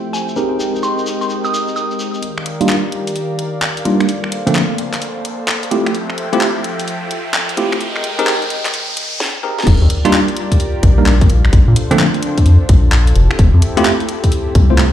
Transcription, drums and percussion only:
0.14 shekere
0.29 shekere
0.36 shekere
0.60 shekere
0.76 shekere
0.83 shekere
0.98 shekere
1.06 shekere
1.22 shekere
1.30 shekere
1.44 shekere
1.54 shekere
1.68 shekere
1.76 shekere
1.91 shekere
1.99 shekere
2.14 shekere
2.23 closed hi-hat
2.38 finger snap
2.46 closed hi-hat
2.61 closed hi-hat
2.69 clap
2.92 closed hi-hat
3.07 closed hi-hat
3.16 closed hi-hat
3.39 closed hi-hat
3.62 clap
3.77 closed hi-hat
3.85 closed hi-hat
4.00 finger snap, closed hi-hat
4.09 closed hi-hat
4.24 finger snap
4.32 closed hi-hat
4.47 closed hi-hat
4.55 clap
4.78 closed hi-hat
4.93 clap, closed hi-hat
5.02 closed hi-hat
5.25 closed hi-hat
5.48 clap
5.63 closed hi-hat
5.71 closed hi-hat
5.86 finger snap, closed hi-hat
5.95 closed hi-hat
6.10 finger snap
6.18 closed hi-hat
6.33 closed hi-hat
6.41 clap
6.64 closed hi-hat
6.79 closed hi-hat
6.88 closed hi-hat
7.11 closed hi-hat
7.34 clap
7.49 closed hi-hat
7.57 closed hi-hat
7.72 finger snap, closed hi-hat
7.81 closed hi-hat
7.96 finger snap
8.04 closed hi-hat
8.19 closed hi-hat
8.27 clap
8.42 closed hi-hat
8.50 closed hi-hat
8.65 clap, closed hi-hat
8.74 closed hi-hat
8.97 closed hi-hat
9.20 snare
9.59 snare
9.67 kick, closed hi-hat, crash
9.90 closed hi-hat
10.05 closed hi-hat
10.13 clap
10.28 closed hi-hat
10.37 closed hi-hat
10.52 kick, closed hi-hat
10.60 closed hi-hat
10.83 kick, closed hi-hat
11.06 clap
11.21 kick, closed hi-hat
11.30 closed hi-hat
11.45 finger snap
11.53 kick, closed hi-hat
11.76 closed hi-hat
11.91 closed hi-hat
11.99 clap
12.14 closed hi-hat
12.23 closed hi-hat
12.38 kick, closed hi-hat
12.46 closed hi-hat
12.69 kick, closed hi-hat
12.92 clap
13.07 closed hi-hat
13.16 closed hi-hat
13.31 finger snap
13.39 kick, closed hi-hat
13.62 closed hi-hat
13.77 closed hi-hat
13.85 clap
14.00 closed hi-hat
14.09 closed hi-hat
14.24 kick, closed hi-hat
14.32 closed hi-hat
14.55 kick, closed hi-hat
14.78 clap

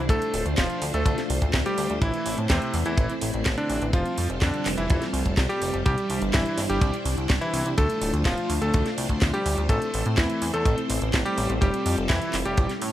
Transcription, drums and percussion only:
0.09 kick, closed hi-hat
0.22 closed hi-hat
0.34 open hi-hat
0.46 closed hi-hat
0.58 kick, snare, clap, closed hi-hat
0.70 closed hi-hat
0.82 open hi-hat
0.94 closed hi-hat
1.06 kick, closed hi-hat
1.18 snare, closed hi-hat
1.30 open hi-hat
1.42 kick, closed hi-hat
1.54 kick, snare, clap, closed hi-hat
1.66 closed hi-hat
1.78 open hi-hat
1.90 closed hi-hat
2.02 kick, closed hi-hat
2.14 closed hi-hat
2.26 open hi-hat
2.38 closed hi-hat
2.50 kick, snare, clap, closed hi-hat
2.62 closed hi-hat
2.74 open hi-hat
2.86 closed hi-hat
2.97 kick, closed hi-hat
3.10 closed hi-hat
3.21 open hi-hat
3.34 closed hi-hat
3.46 kick, snare, clap, closed hi-hat
3.58 closed hi-hat
3.70 open hi-hat
3.82 closed hi-hat
3.93 kick, closed hi-hat
4.06 closed hi-hat
4.18 open hi-hat
4.30 closed hi-hat
4.42 kick, snare, clap, closed hi-hat
4.54 closed hi-hat
4.66 clap, open hi-hat
4.78 closed hi-hat
4.90 kick, closed hi-hat
5.02 snare, closed hi-hat
5.14 open hi-hat
5.26 kick, closed hi-hat
5.37 kick, snare, clap, closed hi-hat
5.50 closed hi-hat
5.62 open hi-hat
5.74 closed hi-hat
5.86 kick, closed hi-hat
5.98 closed hi-hat
6.10 open hi-hat
6.22 closed hi-hat
6.34 kick, snare, clap, closed hi-hat
6.46 closed hi-hat
6.58 snare, open hi-hat
6.70 closed hi-hat
6.81 kick, closed hi-hat
6.94 closed hi-hat
7.05 open hi-hat
7.18 closed hi-hat
7.30 kick, snare, clap, closed hi-hat
7.42 closed hi-hat
7.54 open hi-hat
7.66 closed hi-hat
7.78 kick, closed hi-hat
7.90 closed hi-hat
8.01 open hi-hat
8.14 closed hi-hat
8.25 kick, snare, clap, closed hi-hat
8.38 closed hi-hat
8.50 open hi-hat
8.62 closed hi-hat
8.74 kick, closed hi-hat
8.86 snare, closed hi-hat
8.98 open hi-hat
9.09 kick, closed hi-hat
9.22 kick, snare, clap, closed hi-hat
9.34 closed hi-hat
9.46 open hi-hat
9.58 closed hi-hat
9.69 kick, closed hi-hat
9.82 closed hi-hat
9.94 open hi-hat
10.06 closed hi-hat
10.18 kick, snare, clap, closed hi-hat
10.30 closed hi-hat
10.42 open hi-hat
10.54 closed hi-hat
10.65 kick, closed hi-hat
10.78 closed hi-hat
10.90 open hi-hat
11.02 closed hi-hat
11.14 kick, snare, clap, closed hi-hat
11.26 closed hi-hat
11.38 open hi-hat
11.50 closed hi-hat
11.62 kick, closed hi-hat
11.74 closed hi-hat
11.86 open hi-hat
11.98 closed hi-hat
12.10 kick, snare, clap, closed hi-hat
12.22 closed hi-hat
12.33 clap, open hi-hat
12.46 closed hi-hat
12.57 kick, closed hi-hat
12.69 snare, closed hi-hat
12.82 open hi-hat

